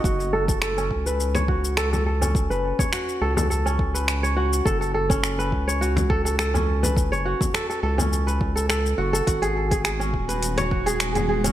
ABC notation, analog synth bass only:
X:1
M:4/4
L:1/16
Q:"Swing 16ths" 1/4=104
K:F#dor
V:1 name="Analog synth bass" clef=bass
F,,,6 C,,8- C,,2- | C,, F,,,2 z3 C,,8- C,,2 | F,,,6 C,,8- C,,2- | C,, F,,,2 z3 C,,4 C,,4 F,,,2 |
G,,,6 D,,,8- D,,,2 |]